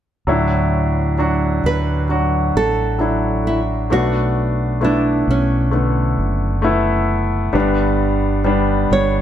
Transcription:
0.27 1.59 D2 medium
0.27 1.60 A2 medium
0.27 1.14 F#3 medium
0.27 1.14 D4 medium
0.27 1.15 E4 medium
1.18 2.05 F#3 medium
1.18 2.05 D4 medium
1.18 2.05 F#4 medium
1.64 2.51 D2 medium
1.64 2.56 B4 medium
2.09 2.96 F#3 medium
2.09 2.96 D4 soft
2.09 2.96 F#4 medium
2.55 3.91 A1 medium
2.55 3.47 A4 medium
2.99 3.86 F#3 medium
2.99 3.86 D4 soft
2.99 3.87 E4 medium
3.47 3.59 E4 medium
3.90 5.24 B1 medium
3.90 4.77 A3 medium
3.90 4.77 B3 medium
3.90 4.78 D4 medium
3.90 4.79 F#4 medium
4.81 5.68 A3 medium
4.81 5.68 B3 soft
4.81 5.30 D4 medium
4.81 5.69 E4 medium
5.28 6.14 B1 medium
5.28 7.07 C#4 medium
5.71 6.60 D3 medium
5.71 6.58 A3 medium
5.71 6.59 B3 soft
6.17 7.50 F#1 medium
6.62 7.49 A3 medium
6.62 7.50 B3 medium
6.62 7.50 E4 medium
7.53 8.86 G1 medium
7.53 8.86 G2 medium
7.53 8.86 D3 medium
7.53 8.40 G3 medium
7.53 8.41 B3 medium
7.53 8.41 D4 medium
8.44 9.22 G3 medium
8.44 9.22 B3 medium
8.44 9.22 D4 medium
8.90 9.22 G1 medium
8.90 9.22 C#5 medium

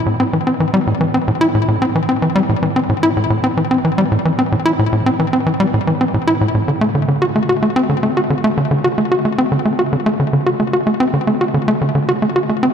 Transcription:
0.06 0.16 A2 medium
0.20 0.24 C4 medium
0.33 0.40 E3 medium
0.47 0.53 C4 medium
0.60 0.67 E3 medium
0.74 0.80 G3 loud
0.87 0.94 A2 medium
1.01 1.07 E3 medium
1.14 1.18 C4 medium
1.28 1.32 A2 medium
1.41 1.48 E4 loud
1.55 1.64 A2 medium
1.68 1.78 A2 medium
1.82 1.86 C4 medium
1.95 2.02 E3 medium
2.09 2.15 C4 medium
2.22 2.29 E3 medium
2.35 2.42 G3 loud
2.49 2.56 A2 medium
2.63 2.69 E3 medium
2.76 2.80 C4 medium
2.89 2.94 A2 medium
3.03 3.10 E4 loud
3.17 3.26 A2 medium
3.30 3.40 A2 medium
3.44 3.48 C4 medium
3.57 3.64 E3 medium
3.71 3.77 C4 medium
3.85 3.91 E3 medium
3.98 4.04 G3 loud
4.12 4.18 A2 medium
4.25 4.32 E3 medium
4.39 4.42 C4 medium
4.52 4.56 A2 medium
4.66 4.72 E4 loud
4.79 4.89 A2 medium
4.93 5.02 A2 medium
5.06 5.10 C4 medium
5.19 5.26 E3 medium
5.33 5.39 C4 medium
5.46 5.53 E3 medium
5.60 5.66 G3 loud
5.74 5.80 A2 medium
5.87 5.94 E3 medium
6.01 6.05 C4 medium
6.14 6.18 A2 medium
6.27 6.34 E4 loud
6.41 6.51 A2 medium
6.55 6.64 A2 medium
6.68 6.72 D3 medium
6.81 6.88 A3 loud
6.95 7.05 D3 medium
7.08 7.18 D3 medium
7.22 7.26 F#4 medium
7.36 7.42 A3 medium
7.49 7.56 F#4 medium
7.63 7.69 A3 medium
7.76 7.83 C4 loud
7.89 7.96 D3 medium
8.03 8.10 A3 medium
8.17 8.21 F#4 medium
8.30 8.34 D3 medium
8.44 8.50 A3 loud
8.57 8.67 D3 medium
8.71 8.81 D3 medium
8.84 8.88 F#4 medium
8.98 9.04 A3 medium
9.12 9.18 F#4 medium
9.25 9.31 A3 medium
9.38 9.45 C4 loud
9.52 9.58 D3 medium
9.65 9.72 A3 medium
9.79 9.83 F#4 medium
9.93 9.96 D3 medium
10.06 10.13 A3 loud
10.20 10.29 D3 medium
10.33 10.43 D3 medium
10.46 10.50 F#4 medium
10.60 10.66 A3 medium
10.73 10.80 F#4 medium
10.87 10.93 A3 medium
11.00 11.07 C4 loud
11.14 11.20 D3 medium
11.27 11.34 A3 medium
11.41 11.45 F#4 medium
11.54 11.58 D3 medium
11.68 11.74 A3 loud
11.81 11.91 D3 medium
11.95 12.05 D3 medium
12.09 12.13 F#4 medium
12.22 12.29 A3 medium
12.36 12.42 F#4 medium
12.49 12.56 A3 medium
12.63 12.69 C4 loud

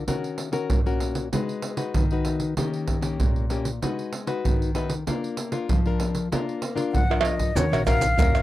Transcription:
0.07 0.67 D#3 soft
0.07 0.49 C#4 soft
0.07 0.49 F#4 soft
0.07 0.50 A#4 soft
0.07 pandeiro medium
0.07 surdo soft
0.24 pandeiro soft
0.38 pandeiro medium
0.52 0.79 C#4 medium
0.52 0.80 F#4 soft
0.52 0.80 A#4 medium
0.52 pandeiro soft
0.70 1.29 A#2 medium
0.70 pandeiro medium
0.70 surdo medium
0.86 1.28 C#4 medium
0.86 1.28 F#4 medium
0.86 1.28 A#4 medium
0.86 pandeiro soft
1.00 pandeiro medium
1.15 pandeiro soft
1.33 1.92 G#3 medium
1.33 1.74 D#4 soft
1.33 1.74 F#4 soft
1.33 1.75 B4 medium
1.33 pandeiro medium
1.33 surdo medium
1.49 pandeiro soft
1.62 pandeiro medium
1.77 2.04 D#4 medium
1.77 2.04 F#4 medium
1.77 2.05 B4 medium
1.77 pandeiro medium
1.94 2.54 D#3 medium
1.94 pandeiro medium
1.94 surdo medium
2.11 2.53 D#4 medium
2.11 2.53 F#4 soft
2.11 2.53 B4 medium
2.11 pandeiro soft
2.25 pandeiro medium
2.40 pandeiro soft
2.57 3.17 D#3 medium
2.57 2.99 A#3 soft
2.57 2.99 C#4 soft
2.57 3.00 G4 soft
2.57 pandeiro medium
2.57 surdo medium
2.73 pandeiro soft
2.88 pandeiro medium
2.88 surdo medium
3.01 3.44 A#3 soft
3.01 3.45 C#4 medium
3.01 3.45 G4 medium
3.01 pandeiro medium
3.20 3.79 A#2 medium
3.20 pandeiro medium
3.20 surdo medium
3.36 pandeiro soft
3.50 3.69 A#3 soft
3.50 3.69 C#4 soft
3.50 3.69 G4 soft
3.50 pandeiro medium
3.65 pandeiro medium
3.82 4.41 G#3 medium
3.82 4.11 D#4 soft
3.82 4.12 F#4 soft
3.82 4.12 B4 medium
3.82 pandeiro medium
3.82 surdo soft
3.99 pandeiro soft
4.13 pandeiro medium
4.27 4.69 D#4 medium
4.27 4.70 F#4 medium
4.27 4.70 B4 medium
4.27 pandeiro medium
4.45 5.04 D#3 medium
4.45 pandeiro medium
4.45 surdo medium
4.62 pandeiro soft
4.75 4.94 D#4 medium
4.75 4.94 F#4 medium
4.75 4.94 B4 medium
4.75 pandeiro medium
4.90 pandeiro medium
5.07 5.66 A#3 medium
5.07 5.36 D4 soft
5.07 5.36 F4 soft
5.07 5.36 A#4 soft
5.07 pandeiro medium
5.07 surdo medium
5.24 pandeiro soft
5.37 pandeiro medium
5.52 5.79 D4 medium
5.52 5.79 F4 medium
5.52 5.79 A#4 medium
5.52 pandeiro medium
5.69 6.28 F3 medium
5.69 pandeiro medium
5.69 surdo medium
5.86 6.27 D4 soft
5.86 6.27 F4 soft
5.86 6.27 A#4 medium
5.86 pandeiro soft
6.00 pandeiro medium
6.15 pandeiro soft
6.32 6.91 A#3 medium
6.32 6.61 D4 soft
6.32 6.61 F4 soft
6.32 6.61 A#4 soft
6.32 pandeiro medium
6.32 surdo soft
6.49 pandeiro soft
6.62 pandeiro medium
6.76 7.03 D4 medium
6.76 7.03 F4 medium
6.76 7.03 A#4 medium
6.76 pandeiro soft
6.92 7.52 F3 medium
6.92 7.22 F#5 medium
6.92 pandeiro medium
6.92 surdo medium
7.10 7.51 D4 medium
7.10 7.51 F4 medium
7.10 7.52 A#4 soft
7.10 pandeiro soft
7.10 tamborim medium
7.21 7.57 D#5 medium
7.21 pandeiro medium
7.21 tamborim medium
7.39 pandeiro medium
7.39 surdo medium
7.55 7.69 D#2 medium
7.55 8.15 D#3 soft
7.55 7.66 C#4 soft
7.55 7.66 F#4 soft
7.55 7.66 A#4 medium
7.55 7.85 C#5 medium
7.55 pandeiro medium
7.55 maracas medium
7.55 surdo medium
7.72 8.11 A#1 medium
7.72 7.82 C#4 medium
7.72 7.83 F#4 medium
7.72 7.83 A#4 medium
7.72 pandeiro soft
7.72 tamborim medium
7.72 maracas soft
7.86 8.05 C#4 medium
7.86 8.05 F#4 medium
7.86 8.05 A#4 medium
7.86 8.42 F5 loud
7.86 pandeiro medium
7.86 tamborim medium
7.86 maracas medium
7.86 surdo medium
8.01 pandeiro medium
8.01 maracas medium
8.18 8.42 D#2 loud
8.18 8.42 A#2 medium
8.18 8.42 C#4 medium
8.18 8.42 F#4 medium
8.18 8.42 A#4 medium
8.18 pandeiro medium
8.18 tamborim medium
8.18 maracas medium
8.18 surdo loud
8.35 pandeiro soft
8.35 tamborim medium
8.35 maracas soft

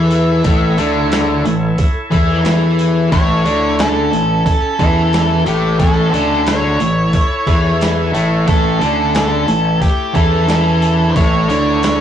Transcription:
0.00 0.41 E2 medium
0.00 0.42 E3 medium
0.00 0.44 E3 medium
0.00 0.44 E4 medium
0.00 0.42 A4 medium
0.00 2.41 A4 medium
0.00 0.42 C#5 medium
0.00 2.42 E5 medium
0.11 open hi-hat medium
0.44 0.76 A1 medium
0.44 0.77 A2 medium
0.44 0.77 A3 loud
0.44 3.10 E4 medium
0.44 3.10 A4 medium
0.44 3.10 C#5 medium
0.44 kick loud
0.44 open hi-hat medium
0.78 1.41 D2 medium
0.78 1.44 D3 medium
0.78 1.44 D4 medium
0.78 open hi-hat medium
1.12 snare loud
1.12 open hi-hat medium
1.45 1.76 A1 medium
1.45 1.72 A2 medium
1.45 open hi-hat medium
1.78 kick medium
1.78 open hi-hat medium
2.10 2.43 E2 medium
2.10 2.42 E3 medium
2.10 2.43 E4 loud
2.10 kick medium
2.10 open hi-hat soft
2.44 3.08 E2 medium
2.44 3.10 E3 medium
2.44 3.11 E4 loud
2.44 snare loud
2.44 open hi-hat medium
2.79 open hi-hat medium
3.11 3.43 A1 medium
3.11 3.44 A2 medium
3.11 3.44 A3 medium
3.11 3.75 E4 medium
3.11 5.77 E4 medium
3.11 5.77 A4 medium
3.11 3.75 C#5 loud
3.11 5.77 C#5 medium
3.11 kick loud
3.11 open hi-hat medium
3.45 4.08 D2 medium
3.45 4.11 D3 medium
3.45 4.11 D4 medium
3.45 open hi-hat soft
3.79 4.42 C#4 medium
3.79 4.42 A4 medium
3.79 snare loud
3.79 open hi-hat medium
4.12 4.43 A1 medium
4.12 4.39 A2 medium
4.12 open hi-hat medium
4.46 5.42 C#4 medium
4.46 5.42 A4 medium
4.46 kick medium
4.46 open hi-hat medium
4.79 5.42 E2 medium
4.79 5.45 E3 medium
4.79 5.45 E4 medium
4.79 kick medium
4.79 open hi-hat medium
5.13 snare loud
5.13 open hi-hat medium
5.44 5.77 A1 medium
5.44 5.77 A2 medium
5.44 5.76 A3 medium
5.44 5.78 A3 loud
5.44 5.77 G4 medium
5.44 open hi-hat medium
5.79 6.11 A1 medium
5.79 6.13 A2 loud
5.79 6.13 A3 loud
5.79 6.43 C#4 medium
5.79 8.45 E4 medium
5.79 6.48 A4 medium
5.79 8.45 A4 medium
5.79 8.45 C#5 medium
5.79 kick loud
5.79 open hi-hat medium
6.13 6.76 D2 medium
6.13 6.79 D3 medium
6.13 6.79 D4 medium
6.13 open hi-hat medium
6.47 7.77 E4 medium
6.47 7.77 C#5 medium
6.47 snare loud
6.47 open hi-hat medium
6.79 7.11 A1 medium
6.79 7.06 A2 medium
6.79 open hi-hat medium
7.13 kick medium
7.13 open hi-hat medium
7.47 8.10 E2 medium
7.47 8.12 E3 medium
7.47 8.13 E4 medium
7.47 kick medium
7.47 open hi-hat medium
7.81 snare loud
7.81 open hi-hat medium
8.13 8.45 A1 medium
8.13 8.45 A2 medium
8.13 8.45 A3 loud
8.13 open hi-hat medium
8.46 8.79 A1 medium
8.46 8.79 A2 medium
8.46 8.80 A3 medium
8.46 9.11 C#4 medium
8.46 11.13 E4 medium
8.46 11.13 A4 medium
8.46 9.11 A4 medium
8.46 11.12 C#5 medium
8.46 kick loud
8.46 open hi-hat medium
8.80 9.44 D2 medium
8.80 9.46 D3 medium
8.80 9.47 D4 loud
8.80 open hi-hat medium
9.15 9.78 C#4 medium
9.15 9.81 A4 medium
9.15 snare loud
9.15 open hi-hat medium
9.48 9.79 A1 medium
9.48 9.75 A2 medium
9.48 open hi-hat medium
9.82 10.13 A3 medium
9.82 10.15 G4 medium
9.82 kick medium
9.82 open hi-hat medium
10.14 10.46 E2 loud
10.14 10.47 E3 medium
10.14 11.05 C#4 medium
10.14 10.47 E4 medium
10.14 11.12 A4 loud
10.14 kick medium
10.14 open hi-hat medium
10.48 11.11 E2 medium
10.48 11.15 E3 medium
10.48 11.15 E4 medium
10.48 snare loud
10.48 open hi-hat medium
10.82 open hi-hat medium
11.08 11.15 D4 medium
11.08 11.16 C5 medium
11.15 11.47 A1 loud
11.15 11.48 A2 medium
11.15 12.01 E3 medium
11.15 11.48 A3 medium
11.15 11.47 E4 medium
11.15 12.01 A4 medium
11.15 12.01 C#5 medium
11.15 11.48 C#5 loud
11.15 kick loud
11.15 open hi-hat medium
11.49 12.01 D2 medium
11.49 12.01 D3 medium
11.49 12.01 D4 medium
11.49 12.01 E4 medium
11.49 12.01 C#5 loud
11.49 open hi-hat medium
11.83 snare loud
11.83 open hi-hat medium

